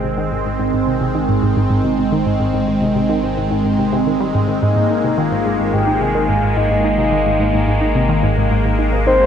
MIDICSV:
0, 0, Header, 1, 5, 480
1, 0, Start_track
1, 0, Key_signature, -4, "major"
1, 0, Tempo, 555556
1, 153, Time_signature, 4, 2, 24, 8
1, 8004, End_track
2, 0, Start_track
2, 0, Title_t, "Soft synth lead"
2, 0, Program_c, 0, 80
2, 3994, Note_on_c, 0, 75, 92
2, 4472, Note_on_c, 0, 77, 98
2, 4485, Note_off_c, 0, 75, 0
2, 4952, Note_on_c, 0, 79, 105
2, 4965, Note_off_c, 0, 77, 0
2, 5192, Note_on_c, 0, 80, 118
2, 5205, Note_off_c, 0, 79, 0
2, 5673, Note_on_c, 0, 75, 97
2, 5686, Note_off_c, 0, 80, 0
2, 7113, Note_off_c, 0, 75, 0
2, 7834, Note_on_c, 0, 72, 114
2, 8004, Note_off_c, 0, 72, 0
2, 8004, End_track
3, 0, Start_track
3, 0, Title_t, "Analog synth pad"
3, 0, Program_c, 1, 89
3, 0, Note_on_c, 1, 51, 77
3, 0, Note_on_c, 1, 56, 71
3, 0, Note_on_c, 1, 60, 87
3, 3983, Note_off_c, 1, 60, 0
3, 3992, Note_on_c, 1, 58, 86
3, 8004, Note_off_c, 1, 51, 0
3, 8004, Note_off_c, 1, 56, 0
3, 8004, Note_off_c, 1, 58, 0
3, 8004, End_track
4, 0, Start_track
4, 0, Title_t, "Synth arpeggio sound"
4, 0, Program_c, 2, 84
4, 32, Note_on_c, 2, 48, 73
4, 78, Note_off_c, 2, 48, 0
4, 152, Note_on_c, 2, 51, 100
4, 266, Note_off_c, 2, 51, 0
4, 273, Note_on_c, 2, 44, 75
4, 319, Note_off_c, 2, 44, 0
4, 395, Note_on_c, 2, 44, 73
4, 470, Note_off_c, 2, 44, 0
4, 514, Note_on_c, 2, 44, 75
4, 590, Note_off_c, 2, 44, 0
4, 633, Note_on_c, 2, 44, 78
4, 709, Note_off_c, 2, 44, 0
4, 753, Note_on_c, 2, 48, 77
4, 829, Note_off_c, 2, 48, 0
4, 872, Note_on_c, 2, 48, 75
4, 918, Note_off_c, 2, 48, 0
4, 992, Note_on_c, 2, 51, 99
4, 1106, Note_off_c, 2, 51, 0
4, 1111, Note_on_c, 2, 44, 81
4, 1158, Note_off_c, 2, 44, 0
4, 1233, Note_on_c, 2, 44, 76
4, 1309, Note_off_c, 2, 44, 0
4, 1352, Note_on_c, 2, 44, 76
4, 1428, Note_off_c, 2, 44, 0
4, 1472, Note_on_c, 2, 44, 79
4, 1549, Note_off_c, 2, 44, 0
4, 1592, Note_on_c, 2, 48, 80
4, 1668, Note_off_c, 2, 48, 0
4, 1712, Note_on_c, 2, 48, 76
4, 1758, Note_off_c, 2, 48, 0
4, 1833, Note_on_c, 2, 51, 101
4, 1947, Note_off_c, 2, 51, 0
4, 1953, Note_on_c, 2, 44, 75
4, 1999, Note_off_c, 2, 44, 0
4, 2073, Note_on_c, 2, 44, 83
4, 2149, Note_off_c, 2, 44, 0
4, 2194, Note_on_c, 2, 44, 76
4, 2270, Note_off_c, 2, 44, 0
4, 2314, Note_on_c, 2, 44, 72
4, 2389, Note_off_c, 2, 44, 0
4, 2433, Note_on_c, 2, 48, 76
4, 2509, Note_off_c, 2, 48, 0
4, 2552, Note_on_c, 2, 48, 81
4, 2598, Note_off_c, 2, 48, 0
4, 2673, Note_on_c, 2, 51, 102
4, 2787, Note_off_c, 2, 51, 0
4, 2793, Note_on_c, 2, 44, 74
4, 2838, Note_off_c, 2, 44, 0
4, 2913, Note_on_c, 2, 44, 76
4, 2989, Note_off_c, 2, 44, 0
4, 3032, Note_on_c, 2, 44, 82
4, 3108, Note_off_c, 2, 44, 0
4, 3152, Note_on_c, 2, 44, 77
4, 3229, Note_off_c, 2, 44, 0
4, 3273, Note_on_c, 2, 48, 78
4, 3349, Note_off_c, 2, 48, 0
4, 3393, Note_on_c, 2, 48, 101
4, 3439, Note_off_c, 2, 48, 0
4, 3513, Note_on_c, 2, 51, 81
4, 3589, Note_off_c, 2, 51, 0
4, 3633, Note_on_c, 2, 55, 99
4, 3678, Note_off_c, 2, 55, 0
4, 3754, Note_on_c, 2, 44, 75
4, 3799, Note_off_c, 2, 44, 0
4, 3873, Note_on_c, 2, 51, 74
4, 3949, Note_off_c, 2, 51, 0
4, 3994, Note_on_c, 2, 44, 84
4, 4069, Note_off_c, 2, 44, 0
4, 4114, Note_on_c, 2, 44, 76
4, 4190, Note_off_c, 2, 44, 0
4, 4235, Note_on_c, 2, 63, 73
4, 4310, Note_off_c, 2, 63, 0
4, 4354, Note_on_c, 2, 48, 75
4, 4399, Note_off_c, 2, 48, 0
4, 4474, Note_on_c, 2, 51, 99
4, 4587, Note_off_c, 2, 51, 0
4, 4594, Note_on_c, 2, 44, 81
4, 4639, Note_off_c, 2, 44, 0
4, 4715, Note_on_c, 2, 44, 74
4, 4790, Note_off_c, 2, 44, 0
4, 4835, Note_on_c, 2, 44, 77
4, 4910, Note_off_c, 2, 44, 0
4, 4954, Note_on_c, 2, 44, 86
4, 5030, Note_off_c, 2, 44, 0
4, 5074, Note_on_c, 2, 63, 78
4, 5149, Note_off_c, 2, 63, 0
4, 5195, Note_on_c, 2, 48, 78
4, 5239, Note_off_c, 2, 48, 0
4, 5313, Note_on_c, 2, 51, 102
4, 5427, Note_off_c, 2, 51, 0
4, 5434, Note_on_c, 2, 44, 82
4, 5479, Note_off_c, 2, 44, 0
4, 5554, Note_on_c, 2, 44, 77
4, 5629, Note_off_c, 2, 44, 0
4, 5674, Note_on_c, 2, 44, 74
4, 5749, Note_off_c, 2, 44, 0
4, 5794, Note_on_c, 2, 44, 75
4, 5869, Note_off_c, 2, 44, 0
4, 5913, Note_on_c, 2, 63, 83
4, 5989, Note_off_c, 2, 63, 0
4, 6034, Note_on_c, 2, 48, 74
4, 6079, Note_off_c, 2, 48, 0
4, 6153, Note_on_c, 2, 51, 99
4, 6267, Note_off_c, 2, 51, 0
4, 6272, Note_on_c, 2, 44, 76
4, 6318, Note_off_c, 2, 44, 0
4, 6392, Note_on_c, 2, 44, 81
4, 6468, Note_off_c, 2, 44, 0
4, 6512, Note_on_c, 2, 44, 79
4, 6589, Note_off_c, 2, 44, 0
4, 6631, Note_on_c, 2, 44, 76
4, 6708, Note_off_c, 2, 44, 0
4, 6751, Note_on_c, 2, 63, 78
4, 6828, Note_off_c, 2, 63, 0
4, 6871, Note_on_c, 2, 48, 84
4, 6917, Note_off_c, 2, 48, 0
4, 6991, Note_on_c, 2, 51, 105
4, 7106, Note_off_c, 2, 51, 0
4, 7112, Note_on_c, 2, 44, 80
4, 7158, Note_off_c, 2, 44, 0
4, 7233, Note_on_c, 2, 44, 79
4, 7309, Note_off_c, 2, 44, 0
4, 7353, Note_on_c, 2, 44, 83
4, 7429, Note_off_c, 2, 44, 0
4, 7474, Note_on_c, 2, 44, 77
4, 7549, Note_off_c, 2, 44, 0
4, 7593, Note_on_c, 2, 63, 78
4, 7669, Note_off_c, 2, 63, 0
4, 7714, Note_on_c, 2, 48, 76
4, 7759, Note_off_c, 2, 48, 0
4, 7832, Note_on_c, 2, 51, 99
4, 7946, Note_off_c, 2, 51, 0
4, 7953, Note_on_c, 2, 44, 77
4, 7998, Note_off_c, 2, 44, 0
4, 8004, End_track
5, 0, Start_track
5, 0, Title_t, "Sub bass"
5, 0, Program_c, 3, 38
5, 0, Note_on_c, 3, 32, 84
5, 3969, Note_off_c, 3, 32, 0
5, 3993, Note_on_c, 3, 32, 87
5, 8004, Note_off_c, 3, 32, 0
5, 8004, End_track
0, 0, End_of_file